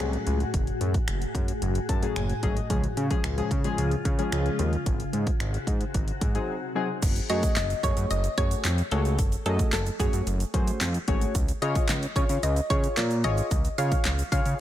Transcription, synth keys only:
0.00 0.39 F#3 loud
0.00 0.39 A3 medium
0.00 0.39 C#4 medium
0.00 0.39 G#4 loud
1.89 2.14 A5 medium
2.02 2.22 F#3 medium
2.02 2.22 A3 medium
2.02 2.22 C#4 medium
2.02 2.22 G#4 medium
2.16 2.41 G#5 medium
2.43 2.56 F#3 medium
2.43 2.56 A3 medium
2.43 2.56 C#4 medium
2.43 2.56 G#4 loud
2.43 2.68 D#5 medium
2.70 2.83 F3 medium
2.70 2.83 G#3 medium
2.70 2.83 C#4 medium
2.70 2.83 G#4 loud
2.97 3.04 C#4 loud
2.97 3.04 G#4 loud
3.10 3.24 F3 medium
3.10 3.24 G#3 medium
3.10 3.24 C#4 medium
3.10 3.24 G#4 loud
3.37 3.51 F3 medium
3.37 3.51 G#3 medium
3.37 3.51 C#4 medium
3.37 3.51 G#4 loud
3.64 3.91 F3 loud
3.64 3.91 G#3 medium
3.64 3.91 C#4 medium
3.64 3.91 G#4 loud
4.18 4.71 F3 loud
4.18 4.71 G#3 medium
4.18 4.71 C#4 medium
4.18 4.71 G#4 loud
6.35 6.55 F#3 medium
6.35 6.55 C4 medium
6.35 6.55 D#4 medium
6.35 6.55 G#4 medium
6.75 6.89 F#3 loud
6.75 6.89 C4 medium
6.75 6.89 D#4 medium
6.75 6.89 G#4 loud
7.29 7.56 A3 medium
7.29 7.56 C#4 medium
7.29 7.56 F#4 medium
7.29 7.56 G#4 medium
7.29 7.56 C#5 loud
7.83 8.10 A3 medium
7.83 8.10 C#4 medium
7.83 8.10 F#4 medium
7.83 8.10 G#4 medium
7.83 8.10 C#5 medium
8.37 8.64 A3 medium
8.37 8.64 C#4 medium
8.37 8.64 F#4 medium
8.37 8.64 G#4 medium
8.37 8.64 C#5 medium
8.92 9.18 A3 medium
8.92 9.18 C#4 medium
8.92 9.18 F#4 medium
8.92 9.18 G#4 medium
8.92 9.18 C#5 medium
9.46 9.72 A3 medium
9.46 9.72 C#4 medium
9.46 9.72 F#4 medium
9.46 9.72 G#4 medium
9.46 9.72 D#5 medium
10.00 10.26 A3 medium
10.00 10.26 C#4 medium
10.00 10.26 F#4 medium
10.00 10.26 G#4 medium
10.00 10.26 C#5 loud
10.54 10.80 A3 medium
10.54 10.80 C#4 medium
10.54 10.80 F#4 medium
10.54 10.80 G#4 medium
10.54 10.80 C5 medium
11.08 11.34 A3 medium
11.08 11.34 C#4 medium
11.08 11.34 F#4 medium
11.08 11.34 G#4 medium
11.08 11.34 C#5 loud
11.62 11.88 F4 loud
11.62 11.88 G#4 medium
11.62 11.88 C#5 loud
12.16 12.42 F4 medium
12.16 12.42 G#4 medium
12.16 12.42 C#5 medium
12.70 12.96 F4 medium
12.70 12.96 G#4 medium
12.70 12.96 C#5 medium
13.24 13.50 F4 medium
13.24 13.50 G#4 medium
13.24 13.51 C#5 medium
13.78 14.04 F4 medium
13.78 14.04 G#4 medium
13.78 14.05 C#5 medium
14.32 14.58 F4 medium
14.32 14.58 G#4 medium
14.32 14.59 C#5 medium

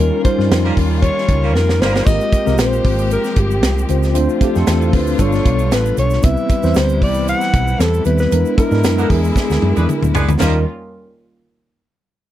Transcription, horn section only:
0.64 0.75 G3 medium
0.64 0.75 A#3 medium
0.64 0.75 F4 medium
0.64 0.75 A#4 medium
1.43 1.53 G3 medium
1.43 1.53 A#3 medium
1.43 1.53 F4 medium
1.43 1.53 A#4 medium
1.82 2.04 G3 medium
1.82 2.04 A#3 loud
1.82 2.04 F4 loud
1.82 2.04 A#4 loud
8.98 9.08 D3 medium
8.98 9.08 A#3 medium
8.98 9.08 B3 medium
8.98 9.08 A#4 loud
9.76 9.86 G#3 medium
9.76 9.86 B3 medium
9.76 9.86 D4 medium
9.76 9.86 B4 medium
10.14 10.31 G#3 medium
10.14 10.31 B3 medium
10.14 10.30 D4 medium
10.14 10.31 B4 loud
10.39 10.58 G3 medium
10.39 10.58 A#3 medium
10.39 10.58 F4 medium
10.39 10.58 A#4 loud

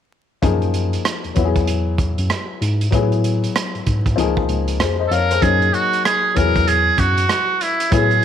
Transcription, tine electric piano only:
0.43 0.96 F#2 medium
1.24 1.29 E2 soft
1.37 2.14 E2 medium
2.18 2.28 F#2 medium
2.62 2.88 G#2 medium
2.92 3.45 A2 medium
3.75 3.79 G#2 soft
3.87 4.13 G#2 medium
4.17 4.44 C#2 medium
4.48 4.80 C#2 medium
4.79 5.06 F2 medium
5.11 5.37 F2 medium
5.42 5.69 F#2 medium
6.37 6.89 E2 medium
6.98 7.25 F#2 medium
7.92 8.19 A2 medium

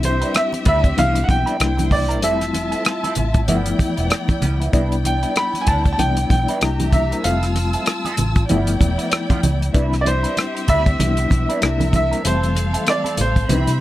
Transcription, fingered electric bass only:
0.00 0.22 C2 medium
0.66 0.91 D2 medium
0.98 1.22 C2 medium
1.29 1.43 B1 medium
1.60 2.23 C2 medium
2.23 2.73 F1 loud
3.17 3.48 A1 medium
3.48 3.73 G1 medium
3.80 muted fingered electric bass stroke soft
3.98 4.08 E1 medium
4.43 4.67 C#2 medium
4.74 5.23 C2 medium
5.68 5.93 D2 medium
5.99 6.24 C2 medium
6.30 6.45 B1 medium
6.62 7.11 C2 medium
7.25 7.74 F1 medium
8.19 8.43 A1 medium
8.50 8.74 G1 medium
8.81 8.95 E1 medium
9.44 9.68 C#2 medium
9.75 10.24 C2 medium
10.69 10.93 D2 medium
11.00 11.25 C2 medium
11.31 11.45 B1 medium
11.63 12.12 C2 medium
12.25 12.74 F1 medium
13.19 13.43 A1 medium
13.50 13.64 C2 medium
13.68 13.78 C3 medium

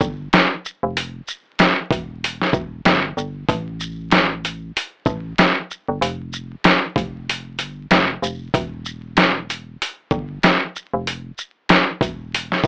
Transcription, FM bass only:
0.01 0.28 G1 medium
0.83 1.21 F1 loud
1.91 2.44 E1 loud
2.53 2.80 E1 loud
2.85 3.12 G1 loud
3.17 3.44 G1 medium
3.49 4.71 A1 loud
5.06 5.33 A1 medium
5.88 5.99 G1 medium
6.01 6.55 F1 loud
6.96 7.61 F1 loud
7.59 7.86 G1 medium
7.91 8.17 F1 medium
8.22 8.49 F1 medium
8.54 9.76 E1 loud
10.11 10.38 G1 medium
10.93 11.31 F1 loud
12.01 12.54 E1 medium
12.64 12.67 E1 loud

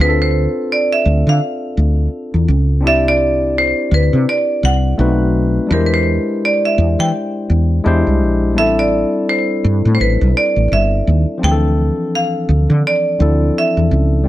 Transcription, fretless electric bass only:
0.00 0.46 D2 medium
1.06 1.23 D2 medium
1.27 1.39 D3 medium
1.77 2.07 D2 medium
2.34 2.46 E2 medium
2.48 2.83 C#2 medium
2.83 3.72 C2 medium
3.91 4.09 D2 medium
4.13 4.25 C3 medium
4.63 4.92 C2 medium
4.99 5.58 B1 medium
5.71 6.17 E2 medium
6.78 6.95 E2 medium
6.99 7.11 E3 medium
7.50 7.79 E2 medium
7.86 8.02 E2 medium
8.07 8.22 C2 medium
8.22 8.57 A#1 medium
8.57 9.03 A1 medium
9.64 9.81 G2 medium
9.85 9.97 A2 medium
10.00 10.17 A1 medium
10.21 10.33 B1 medium
10.56 10.68 A1 medium
10.72 11.00 G1 medium
11.07 11.24 D#2 medium
11.43 11.89 D2 medium
12.49 12.66 D2 medium
12.70 12.82 D3 medium
13.20 13.49 D2 medium
13.77 13.89 E2 medium
13.91 14.27 C#2 medium

